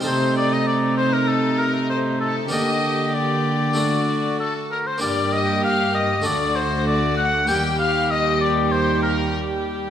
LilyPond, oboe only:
\new Staff \with { instrumentName = "Oboe" } { \time 4/4 \key g \minor \tempo 4 = 97 c''8 d''16 ees''16 d''8 c''16 bes'16 a'8 bes'8 c''8 a'8 | ees''4 d''2 a'8 bes'16 c''16 | d''8 ees''8 f''8 ees''8 d''8 c''8 d''8 fis''8 | g''8 f''8 ees''8 d''8 c''8 bes'8 r4 | }